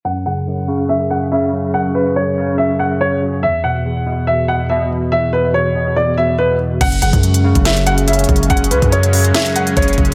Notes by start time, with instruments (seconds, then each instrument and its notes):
0.05 tine electric piano F#2, grand piano F#5
0.26 tine electric piano C#3, grand piano F#5
0.47 tine electric piano F#2
0.68 tine electric piano C#3
0.89 tine electric piano F#2, grand piano E5
1.10 tine electric piano C#3, grand piano F#5
1.31 tine electric piano C#3, grand piano E5
1.53 tine electric piano F#3
1.74 tine electric piano F#2, grand piano F#5
1.95 tine electric piano C#3, grand piano B4
2.16 tine electric piano F#2, grand piano C#5
2.37 tine electric piano C#3
2.58 tine electric piano F#2, grand piano E5
2.79 tine electric piano C#3, grand piano F#5
3.01 tine electric piano C#3, grand piano C#5
3.22 tine electric piano F#3
3.43 tine electric piano E2, grand piano E5
3.64 tine electric piano B2, grand piano F#5
3.85 tine electric piano E2
4.06 tine electric piano B2
4.27 tine electric piano E2, grand piano E5
4.48 tine electric piano B2, grand piano F#5
4.70 tine electric piano B2, grand piano E5
4.91 tine electric piano E3
5.12 tine electric piano E2, grand piano E5
5.33 tine electric piano B2, grand piano B4
5.54 tine electric piano E2, grand piano C#5
5.75 tine electric piano B2
5.96 tine electric piano E2, grand piano D5
6.17 tine electric piano B2, grand piano E5
6.38 tine electric piano B2, grand piano B4
6.60 tine electric piano E3
6.81 808-style bass F#1, tine electric piano F#2, analog synth pad F#3 G#3 C#4 G#4, grand piano F#5, kick, closed hi-hat, crash
6.92 closed hi-hat
7.02 808-style bass F#1, tine electric piano C#3, grand piano F#5, closed hi-hat
7.13 808-style bass F#2, kick, closed hi-hat
7.23 tine electric piano F#2, closed hi-hat
7.34 closed hi-hat
7.44 tine electric piano C#3
7.55 808-style bass F#1, kick, closed hi-hat
7.65 tine electric piano F#2, grand piano E5, snare, closed hi-hat
7.77 closed hi-hat
7.87 tine electric piano C#3, grand piano F#5, closed hi-hat
7.98 closed hi-hat
8.08 tine electric piano C#3, grand piano E5, closed hi-hat
8.13 closed hi-hat
8.19 closed hi-hat
8.24 closed hi-hat
8.29 808-style bass F#1, tine electric piano F#3, kick, closed hi-hat
8.36 closed hi-hat
8.43 closed hi-hat
8.50 808-style bass F#1, tine electric piano F#2, grand piano F#5, kick, closed hi-hat
8.57 closed hi-hat
8.64 closed hi-hat
8.71 808-style bass C#2, tine electric piano C#3, grand piano B4, closed hi-hat
8.82 808-style bass F#2, kick, closed hi-hat
8.92 tine electric piano F#2, grand piano C#5, closed hi-hat
9.03 closed hi-hat
9.13 tine electric piano C#3, open hi-hat
9.24 closed hi-hat
9.34 tine electric piano F#2, grand piano E5, snare, closed hi-hat
9.46 closed hi-hat
9.56 tine electric piano C#3, grand piano F#5, closed hi-hat
9.67 closed hi-hat
9.77 808-style bass F#1, tine electric piano C#3, grand piano C#5, kick, closed hi-hat
9.82 closed hi-hat
9.88 closed hi-hat
9.93 closed hi-hat
9.98 808-style bass F#1, tine electric piano F#3, kick, closed hi-hat
10.05 closed hi-hat